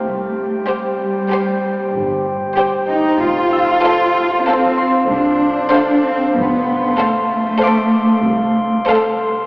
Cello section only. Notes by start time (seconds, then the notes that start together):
0.03 A3
0.66 G3
2.88 D#4
3.20 F4
4.46 C4
5.10 D4
6.04 C4
6.36 B3
6.98 A3